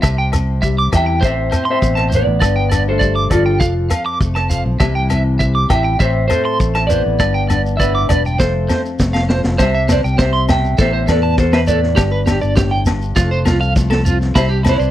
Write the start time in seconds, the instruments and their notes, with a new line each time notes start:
0.02 fingered electric bass C2, nylon-string guitar C3, clean electric guitar E5, kick, cross-stick, low agogo, shekere
0.18 clean electric guitar G5
0.32 nylon-string guitar C4, muted clean electric guitar stroke, cross-stick, closed hi-hat, low agogo, shekere
0.62 nylon-string guitar G3, clean electric guitar E5, kick, shekere
0.78 clean electric guitar D6
0.92 fingered electric bass E2, nylon-string guitar E3, trombone E4, clean electric guitar E5 G5, kick, cross-stick, closed hi-hat, low agogo, shekere
1.06 clean electric guitar G5
1.21 fingered electric bass A1, nylon-string guitar A2, clean electric guitar C5, kick, shekere
1.25 trombone C4, clean electric guitar E5
1.51 nylon-string guitar C4, clean electric guitar C5, cross-stick, closed hi-hat, low agogo, shekere
1.65 clean electric guitar C6
1.70 trombone C4, clean electric guitar C5 E5
1.81 fingered electric bass A1, nylon-string guitar B2, kick, shekere
1.95 clean electric guitar A5, cross-stick, low agogo
2.10 nylon-string guitar A2, clean electric guitar C5, closed hi-hat, shekere
2.14 trombone B3, clean electric guitar B4 D5
2.27 fingered electric bass A1
2.40 fingered electric bass G1, nylon-string guitar G2, clean electric guitar D5, kick, cross-stick, low agogo, shekere
2.56 clean electric guitar G5
2.69 nylon-string guitar D4, clean electric guitar D5, cross-stick, closed hi-hat, low agogo, shekere
2.89 trombone A3, clean electric guitar A4 C5
2.99 nylon-string guitar G3, clean electric guitar D5, kick, shekere
3.15 clean electric guitar D6
3.30 fingered electric bass G1, nylon-string guitar D3, trombone F3, clean electric guitar F4 A4 D5, kick, cross-stick, closed hi-hat, low agogo, shekere
3.46 clean electric guitar G5
3.60 fingered electric bass F1, nylon-string guitar F2, clean electric guitar F5, kick, shekere
3.90 nylon-string guitar C4, clean electric guitar F5, cross-stick, closed hi-hat, low agogo, shekere
4.06 clean electric guitar D6
4.21 fingered electric bass F1, nylon-string guitar A3, kick, shekere
4.35 clean electric guitar A5, cross-stick, low agogo
4.50 nylon-string guitar F3, clean electric guitar F5, closed hi-hat, shekere
4.66 fingered electric bass B1
4.80 fingered electric bass C2, nylon-string guitar C3 E3 G3 C4 E4, clean electric guitar E5, kick, cross-stick, low agogo, shekere
4.95 clean electric guitar G5
5.10 nylon-string guitar C4, clean electric guitar E5, cross-stick, closed hi-hat, low agogo, shekere
5.39 nylon-string guitar C3, clean electric guitar E5, kick, shekere
5.55 clean electric guitar D6
5.68 fingered electric bass A1, trombone E4, clean electric guitar E5 G5, muted nylon-string guitar stroke, kick, cross-stick, closed hi-hat, low agogo, shekere
5.84 clean electric guitar G5
5.99 fingered electric bass A1, nylon-string guitar A2, trombone C4, clean electric guitar C5 E5, kick, shekere
6.28 trombone A3, nylon-string guitar C4, clean electric guitar A4 C5, cross-stick, closed hi-hat, low agogo, shekere
6.45 clean electric guitar C6
6.60 fingered electric bass A1, nylon-string guitar A3, kick, shekere
6.75 clean electric guitar A5, cross-stick, low agogo
6.87 nylon-string guitar E3, trombone B3, clean electric guitar B4 C5 D5, closed hi-hat, shekere
7.06 fingered electric bass A1
7.20 fingered electric bass G1, nylon-string guitar G2, clean electric guitar D5, kick, cross-stick, low agogo, shekere
7.34 clean electric guitar G5
7.49 nylon-string guitar D4, clean electric guitar D5, cross-stick, closed hi-hat, low agogo, shekere
7.66 shekere
7.77 nylon-string guitar A2, trombone B3, clean electric guitar B4 D5 E5, kick, shekere
7.95 clean electric guitar D6
8.08 fingered electric bass E1, nylon-string guitar G2, trombone B3, clean electric guitar D5, kick, cross-stick, closed hi-hat, low agogo, shekere
8.12 clean electric guitar B4
8.25 clean electric guitar G5, shekere
8.39 fingered electric bass F1, nylon-string guitar F2, trombone A3, clean electric guitar A4 C5, kick, snare, shekere
8.68 nylon-string guitar C4, clean electric guitar C5, snare, low agogo, shekere
8.85 shekere
8.99 fingered electric bass F1, nylon-string guitar A3, kick, snare, shekere
9.13 clean electric guitar F5, snare, low agogo
9.29 nylon-string guitar F3, clean electric guitar C5, snare
9.44 fingered electric bass F1, snare, shekere
9.58 fingered electric bass C2, nylon-string guitar C3 G3, clean electric guitar C5, kick, snare, low agogo, shekere
9.63 clean electric guitar E5
9.75 clean electric guitar E5
9.88 nylon-string guitar C4, clean electric guitar B4 C5 D5, snare, low agogo, shekere
10.04 fingered electric bass C2, clean electric guitar G5, shekere
10.18 nylon-string guitar C3, clean electric guitar C5 E5, kick, snare, shekere
10.33 clean electric guitar C6
10.48 nylon-string guitar B2, clean electric guitar E5 G5, snare, low agogo, shekere
10.65 shekere
10.78 fingered electric bass A1, nylon-string guitar A2 B3, clean electric guitar A4 C5 E5, kick, snare, shekere
10.93 clean electric guitar C5
11.07 fingered electric bass E2, clean electric guitar A4 B4 D5, snare, low agogo, shekere
11.23 clean electric guitar A5
11.38 nylon-string guitar B2, clean electric guitar A4 C5, kick, snare, shekere
11.53 clean electric guitar B4 C5 E5, snare, low agogo
11.67 nylon-string guitar A2, clean electric guitar A4 B4 D5, shekere
11.83 snare
11.96 fingered electric bass G1, nylon-string guitar G2 B3, clean electric guitar G4, kick, snare, low agogo, shekere
12.12 clean electric guitar B4
12.26 nylon-string guitar D4, clean electric guitar G4, snare, low agogo, shekere
12.41 fingered electric bass G1, clean electric guitar D5, shekere
12.56 nylon-string guitar A2, clean electric guitar G4, kick, snare, shekere
12.71 clean electric guitar G5
12.86 nylon-string guitar G2, snare, low agogo, shekere
13.02 shekere
13.16 fingered electric bass F1, nylon-string guitar F2 A3, clean electric guitar F4, kick, snare, shekere
13.31 clean electric guitar C5
13.45 fingered electric bass C2, nylon-string guitar C4, clean electric guitar F4, snare, low agogo, shekere
13.61 clean electric guitar F5, shekere
13.75 nylon-string guitar F3 A3, kick, snare, shekere
13.90 clean electric guitar A4, snare, low agogo
14.05 nylon-string guitar C4, clean electric guitar F4, shekere
14.21 snare, shekere
14.35 fingered electric bass C2, nylon-string guitar C3 G3, clean electric guitar E4 C5 E5, kick, snare, low agogo, shekere
14.49 clean electric guitar G4
14.63 nylon-string guitar C4, clean electric guitar E4, snare, low agogo, shekere
14.69 clean electric guitar B4 D5
14.79 fingered electric bass C2, clean electric guitar C5, shekere